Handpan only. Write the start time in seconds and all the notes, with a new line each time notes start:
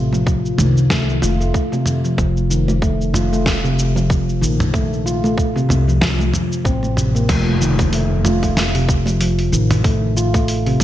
0.13 F3
0.26 F3
0.58 D#3
0.90 A3
1.22 F4
1.40 A3
1.72 C3
2.04 F3
2.18 F3
2.50 D#3
2.83 A3
3.14 F4
3.33 A3
3.64 C3
3.96 F3
4.10 F3
4.42 D#3
4.74 A3
5.06 F4
5.24 A3
5.56 C3
5.88 F3
6.01 F3
6.33 F3
6.65 C4
6.97 C3
7.15 A#3
7.29 F3
7.61 D#3
7.93 A3
8.25 F4
8.43 A3
8.75 C3
9.07 F3
9.21 F3
9.53 D#3
9.85 A3
10.17 F4
10.35 A3
10.66 C3